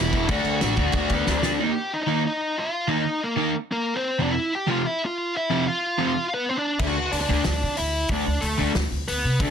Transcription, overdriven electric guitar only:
0.00 0.12 E2 medium
0.00 0.12 B2 medium
0.00 0.13 E3 loud
0.13 0.28 E2 medium
0.13 0.28 B2 medium
0.13 0.28 E3 loud
0.28 0.60 D3 medium
0.28 0.60 A3 medium
0.28 0.60 D4 loud
0.61 0.76 D3 medium
0.61 0.76 A3 loud
0.61 0.75 D4 loud
0.76 0.91 D3 medium
0.76 0.92 A3 medium
0.76 0.93 D4 loud
0.93 1.25 D3 medium
0.93 1.26 A3 loud
0.93 1.27 D4 loud
1.26 1.43 D3 medium
1.26 1.42 A3 medium
1.26 1.41 D4 medium
1.43 1.59 D3 medium
1.43 1.59 A3 medium
1.43 1.58 D4 medium
1.59 1.72 D#3 medium
1.59 1.73 A#3 loud
1.59 1.73 D#4 medium
2.07 2.20 D#3 medium
2.07 2.21 A#3 loud
2.07 2.21 D#4 loud
2.88 3.02 D#3 medium
2.88 3.02 A#3 medium
2.88 3.02 D#4 loud
3.36 3.50 D#3 medium
3.36 3.51 A#3 loud
3.36 3.51 D#4 loud
4.19 4.32 F2 medium
4.19 4.33 C3 medium
4.19 4.33 F3 loud
4.67 4.81 F2 medium
4.67 4.81 C3 loud
4.67 4.82 F3 loud
5.50 5.63 F2 medium
5.50 5.63 C3 medium
5.50 5.63 F3 loud
5.98 6.11 F2 medium
5.98 6.12 C3 loud
5.98 6.12 F3 loud
6.80 6.93 D3 medium
6.80 6.93 A3 medium
6.80 6.93 D4 loud
7.29 7.42 D3 loud
7.29 7.42 A3 loud
7.29 7.42 D4 loud
8.10 8.23 D3 medium
8.10 8.23 A3 medium
8.10 8.24 D4 medium
8.58 8.71 D3 medium
8.58 8.72 A3 loud
8.58 8.72 D4 loud
9.40 9.50 D3 medium
9.40 9.50 A3 loud
9.40 9.50 D4 loud

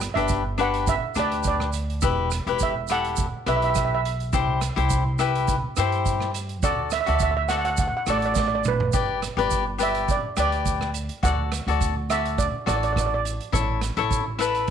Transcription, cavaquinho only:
0.15 0.42 D4 medium
0.15 0.42 G4 medium
0.15 0.42 B4 medium
0.58 0.93 D4 medium
0.58 0.94 G4 medium
0.58 0.94 B4 medium
1.15 1.68 D4 medium
1.15 1.68 G4 medium
1.15 1.69 B4 medium
2.02 2.29 E4 medium
2.02 2.29 G4 medium
2.02 2.29 B4 medium
2.47 2.73 E4 medium
2.47 2.73 G4 medium
2.47 2.74 B4 medium
2.89 3.24 E4 medium
2.89 3.25 G4 medium
2.89 3.25 A4 medium
3.46 3.99 E4 medium
3.46 3.99 G4 soft
3.46 3.99 B4 medium
4.33 4.59 E4 medium
4.33 4.60 G4 medium
4.33 4.60 C5 medium
4.76 5.03 E4 medium
4.76 5.03 G4 medium
4.76 5.03 C5 medium
5.19 5.54 E4 medium
5.19 5.55 G4 medium
5.19 5.55 B4 medium
5.77 6.29 E4 medium
5.77 6.30 G4 medium
5.77 6.30 C5 medium
6.64 6.90 F#4 medium
6.64 6.90 A4 medium
6.64 6.90 D5 medium
7.06 7.33 F#4 medium
7.06 7.33 A4 medium
7.06 7.34 D5 medium
7.49 7.85 F#4 medium
7.49 7.85 A4 medium
7.49 7.85 D5 medium
8.08 8.60 F#4 medium
8.08 8.60 A4 medium
8.08 8.61 D5 medium
8.93 9.20 G4 medium
8.93 9.20 B4 medium
8.93 9.20 D5 medium
9.37 9.63 G4 medium
9.37 9.64 B4 medium
9.37 9.64 D5 medium
9.78 10.14 G4 medium
9.78 10.14 B4 medium
9.78 10.15 D5 medium
10.37 10.89 G4 medium
10.37 10.89 B4 medium
10.37 10.90 D5 medium
11.23 11.49 F#4 medium
11.23 11.50 A4 medium
11.23 11.50 D5 medium
11.68 11.93 F#4 medium
11.68 11.94 A4 medium
11.68 11.94 D5 medium
12.11 12.45 F#4 medium
12.11 12.45 A4 soft
12.11 12.46 D5 medium
12.66 13.19 F#4 medium
12.66 13.19 A4 medium
12.66 13.20 D5 medium
13.52 13.79 E4 medium
13.52 13.80 A4 medium
13.52 13.80 C#5 medium
13.97 14.23 E4 medium
13.97 14.23 A4 medium
13.97 14.24 C#5 medium
14.39 14.70 E4 medium
14.39 14.70 A4 medium
14.39 14.70 B4 medium

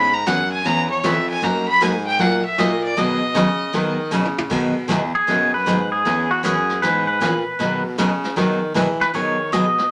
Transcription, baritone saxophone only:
0.00 0.25 G#2 medium
0.26 0.64 F#2 loud
0.65 1.02 E2 medium
1.03 1.41 F2 medium
1.42 1.80 F#2 medium
1.81 2.18 G#2 medium
2.20 2.43 A#2 medium
2.58 2.95 A#2 medium
2.97 3.34 B2 medium
3.36 3.73 C#3 loud
3.74 4.11 D#3 medium
4.13 4.50 C#3 medium
4.51 4.88 B2 medium
4.90 5.13 E2 medium
5.15 5.22 E2 soft
5.28 5.66 F#2 medium
5.67 6.04 G#2 medium
6.05 6.43 E2 medium
6.44 6.81 F#2 loud
6.82 7.20 G#2 medium
7.21 7.45 A#2 medium
7.46 7.53 A#2 soft
7.60 7.97 B2 medium
7.98 8.36 C#3 loud
8.37 8.74 D#3 medium
8.75 9.13 E3 loud
9.14 9.51 D#3 medium
9.52 9.90 B2 medium

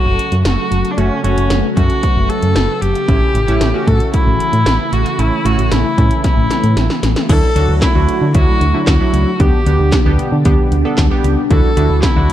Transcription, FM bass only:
0.06 0.18 F#1 loud
0.32 0.44 F#2 loud
0.45 0.57 F#1 loud
0.72 0.84 F#1 loud
0.98 1.10 F#1 loud
1.24 1.36 F#1 loud
1.37 1.49 F#1 loud
1.51 1.63 F#1 loud
1.77 1.89 F#2 loud
2.16 2.28 F#1 loud
2.43 2.55 F#2 medium
2.56 2.68 F#1 loud
2.82 2.94 F#1 medium
3.08 3.20 A1 loud
3.35 3.47 A1 loud
3.48 3.60 A1 medium
3.61 3.73 A1 medium
3.87 3.99 A2 loud
4.27 4.39 A1 loud
4.53 4.65 A2 loud
4.66 4.78 A1 loud
4.93 5.05 A1 medium
5.19 5.31 A1 loud
5.45 5.57 A1 loud
5.58 5.70 A1 medium
5.72 5.84 A1 loud
5.98 6.10 A2 loud
6.37 6.49 A1 loud
6.64 6.76 A2 loud
6.77 6.89 A1 loud
7.03 7.15 A1 medium
7.29 7.41 D2 loud
7.56 7.68 D2 loud
7.69 7.81 D2 medium
7.95 8.07 D2 loud
8.22 8.34 D3 medium
8.35 8.47 D2 loud
8.61 8.73 D2 loud
8.87 8.99 D2 loud
9.14 9.26 C#2 medium
9.40 9.52 D2 loud
9.66 9.78 D2 loud
9.80 9.92 D2 medium
10.06 10.18 D2 loud
10.32 10.44 D3 loud
10.45 10.57 D2 loud
10.72 10.84 D2 loud
10.98 11.10 D2 loud
11.24 11.36 C#2 medium
11.51 11.63 D2 loud
11.77 11.89 D2 loud
11.90 12.02 D2 loud
12.16 12.28 D2 loud

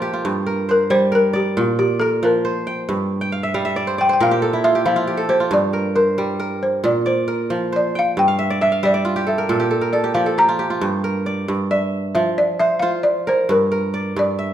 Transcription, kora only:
0.00 0.30 A#2 medium
0.00 0.30 F3 medium
0.00 0.13 F4 medium
0.00 1.43 G4 medium
0.00 0.52 A4 medium
0.00 0.46 A#4 medium
0.13 1.65 F4 medium
0.25 1.62 G2 medium
0.46 1.11 A#4 medium
0.69 1.87 C5 medium
0.90 1.62 G3 medium
1.12 2.01 A#4 medium
1.33 1.78 D5 medium
1.57 2.94 A#2 medium
1.79 2.90 D5 medium
2.01 3.28 A#4 medium
2.23 2.94 F3 medium
2.45 3.63 C5 medium
2.67 3.21 G5 medium
2.89 4.25 G2 medium
3.21 4.14 G5 medium
3.32 3.54 F5 medium
3.43 3.65 E5 medium
3.54 4.25 G3 medium
3.54 4.59 F5 medium
3.65 4.70 E5 medium
3.76 3.98 D5 medium
3.87 4.09 C5 medium
3.98 5.09 D5 medium
4.09 5.28 C5 medium
4.20 5.57 A#2 medium
4.20 4.48 A#4 medium
4.31 4.75 G4 medium
4.42 5.17 A4 medium
4.53 4.85 E4 medium
4.64 4.92 F4 medium
4.75 5.07 G4 medium
4.86 5.57 F3 medium
4.86 5.46 E4 medium
4.96 5.40 F4 medium
5.07 5.29 G4 medium
5.17 5.79 A4 medium
5.29 6.70 G4 medium
5.40 6.91 F4 medium
5.51 6.89 G2 medium
5.73 6.39 A#4 medium
5.96 7.14 C5 medium
6.18 6.89 G3 medium
6.40 7.27 A#4 medium
6.84 8.22 A#2 medium
7.06 8.17 D5 medium
7.28 8.55 A#4 medium
7.50 8.22 F3 medium
7.72 8.91 C5 medium
7.95 8.88 G5 medium
8.17 9.54 G2 medium
8.28 8.67 F5 medium
8.39 8.61 E5 medium
8.50 8.94 D5 medium
8.61 8.83 E5 medium
8.72 9.72 F5 medium
8.83 9.54 G3 medium
8.83 9.11 E5 medium
8.94 10.05 D5 medium
9.05 10.48 F4 medium
9.16 9.59 G4 medium
9.27 9.49 A4 medium
9.38 9.77 A#4 medium
9.49 10.87 A#2 medium
9.49 9.70 A4 medium
9.60 10.03 G4 medium
9.71 9.93 A4 medium
9.81 10.32 A#4 medium
9.93 10.26 A4 medium
10.04 10.14 G4 medium
10.15 10.87 F3 medium
10.15 10.37 G4 medium
10.26 11.10 A4 medium
10.38 10.59 G4 medium
10.49 10.70 F4 medium
10.59 12.00 G4 medium
10.70 11.77 F4 medium
10.81 11.47 G2 medium
11.04 12.31 A#4 medium
11.26 12.37 D5 medium
11.48 12.21 G2 medium
11.71 12.74 E5 medium
12.15 13.55 F3 medium
12.60 12.82 C5 medium
12.82 14.34 F4 medium
12.82 14.01 C5 medium
13.27 13.71 A#4 medium
13.49 14.15 G2 medium
13.72 14.54 A#4 medium
13.94 14.54 D5 medium
14.16 14.54 G2 medium
14.39 14.54 E5 medium

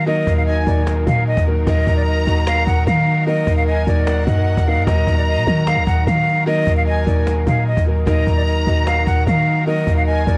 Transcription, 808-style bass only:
0.00 0.25 D#3 loud
0.27 0.65 D#2 loud
0.67 1.05 D#2 loud
1.07 1.36 A#2 loud
1.37 1.66 D#2 loud
1.67 1.86 D#2 loud
1.87 2.25 D#2 loud
2.27 2.65 D#2 loud
2.67 2.86 D#2 loud
2.87 3.45 D#3 loud
3.47 3.85 D#2 loud
3.87 4.25 D#2 loud
4.27 4.56 F#2 loud
4.57 4.78 D#2 loud
4.77 4.86 F#2 loud
4.87 5.06 D#2 loud
5.07 5.38 D#2 loud
5.37 5.46 A#2 loud
5.47 5.78 D#3 loud
5.77 5.86 D2 loud
5.87 6.06 D#2 loud
6.07 6.65 D#3 loud
6.67 7.05 D#2 loud
7.07 7.45 D#2 loud
7.47 7.76 A#2 loud
7.77 8.06 D#2 loud
8.07 8.26 D#2 loud
8.27 8.65 D#2 loud
8.67 9.05 D#2 loud
9.07 9.26 D#2 loud
9.27 9.85 D#3 loud
9.87 10.25 D#2 loud
10.27 10.38 D#2 loud

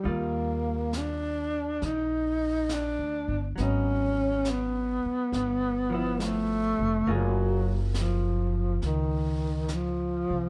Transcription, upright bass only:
0.05 1.78 D#2 medium
1.82 2.95 A#1 medium
2.99 3.26 D2 soft
3.28 3.55 G1 medium
3.58 5.01 G#1 medium
5.05 muted upright bass stroke soft
5.32 6.75 G1 medium
6.79 7.05 F1 medium
7.07 8.77 F#1 medium
8.82 10.25 C#2 medium
10.30 10.49 C2 medium

